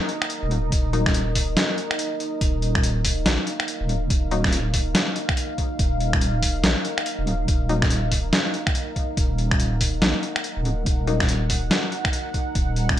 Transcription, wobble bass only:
0, 0, Header, 1, 2, 480
1, 0, Start_track
1, 0, Key_signature, -6, "minor"
1, 0, Tempo, 422535
1, 820, Time_signature, 4, 2, 24, 8
1, 14763, End_track
2, 0, Start_track
2, 0, Title_t, "Wobble bass"
2, 0, Program_c, 0, 39
2, 487, Note_on_c, 0, 27, 97
2, 808, Note_off_c, 0, 27, 0
2, 820, Note_on_c, 0, 27, 100
2, 1768, Note_off_c, 0, 27, 0
2, 2739, Note_on_c, 0, 27, 100
2, 3688, Note_off_c, 0, 27, 0
2, 3701, Note_on_c, 0, 34, 93
2, 3836, Note_off_c, 0, 34, 0
2, 4327, Note_on_c, 0, 27, 96
2, 4649, Note_off_c, 0, 27, 0
2, 4660, Note_on_c, 0, 27, 101
2, 5608, Note_off_c, 0, 27, 0
2, 6580, Note_on_c, 0, 27, 101
2, 7528, Note_off_c, 0, 27, 0
2, 7539, Note_on_c, 0, 34, 88
2, 7675, Note_off_c, 0, 34, 0
2, 8165, Note_on_c, 0, 27, 93
2, 8487, Note_off_c, 0, 27, 0
2, 8499, Note_on_c, 0, 27, 103
2, 9448, Note_off_c, 0, 27, 0
2, 10420, Note_on_c, 0, 27, 97
2, 11368, Note_off_c, 0, 27, 0
2, 11380, Note_on_c, 0, 34, 91
2, 11515, Note_off_c, 0, 34, 0
2, 12008, Note_on_c, 0, 27, 94
2, 12329, Note_off_c, 0, 27, 0
2, 12341, Note_on_c, 0, 27, 100
2, 13289, Note_off_c, 0, 27, 0
2, 14260, Note_on_c, 0, 27, 101
2, 14763, Note_off_c, 0, 27, 0
2, 14763, End_track
0, 0, End_of_file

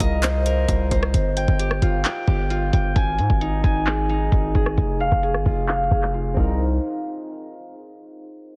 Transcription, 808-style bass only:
0, 0, Header, 1, 2, 480
1, 0, Start_track
1, 0, Tempo, 454545
1, 1204, Time_signature, 4, 2, 24, 8
1, 9039, End_track
2, 0, Start_track
2, 0, Title_t, "808-style bass"
2, 0, Program_c, 0, 38
2, 3, Note_on_c, 0, 36, 107
2, 695, Note_off_c, 0, 36, 0
2, 723, Note_on_c, 0, 36, 105
2, 954, Note_off_c, 0, 36, 0
2, 965, Note_on_c, 0, 36, 102
2, 1195, Note_off_c, 0, 36, 0
2, 1204, Note_on_c, 0, 31, 109
2, 1550, Note_off_c, 0, 31, 0
2, 1563, Note_on_c, 0, 31, 103
2, 1909, Note_off_c, 0, 31, 0
2, 1923, Note_on_c, 0, 31, 107
2, 2154, Note_off_c, 0, 31, 0
2, 2403, Note_on_c, 0, 31, 110
2, 2864, Note_off_c, 0, 31, 0
2, 2885, Note_on_c, 0, 31, 103
2, 3115, Note_off_c, 0, 31, 0
2, 3124, Note_on_c, 0, 32, 107
2, 3364, Note_on_c, 0, 44, 103
2, 3379, Note_off_c, 0, 32, 0
2, 3478, Note_off_c, 0, 44, 0
2, 3483, Note_on_c, 0, 32, 101
2, 3829, Note_off_c, 0, 32, 0
2, 3843, Note_on_c, 0, 32, 106
2, 4534, Note_off_c, 0, 32, 0
2, 4562, Note_on_c, 0, 32, 100
2, 4794, Note_off_c, 0, 32, 0
2, 4804, Note_on_c, 0, 32, 103
2, 5034, Note_off_c, 0, 32, 0
2, 5043, Note_on_c, 0, 29, 112
2, 5389, Note_off_c, 0, 29, 0
2, 5404, Note_on_c, 0, 29, 107
2, 5644, Note_on_c, 0, 31, 103
2, 5660, Note_off_c, 0, 29, 0
2, 5758, Note_off_c, 0, 31, 0
2, 5763, Note_on_c, 0, 29, 108
2, 6224, Note_off_c, 0, 29, 0
2, 6243, Note_on_c, 0, 29, 108
2, 6704, Note_off_c, 0, 29, 0
2, 6724, Note_on_c, 0, 36, 108
2, 7170, Note_off_c, 0, 36, 0
2, 9039, End_track
0, 0, End_of_file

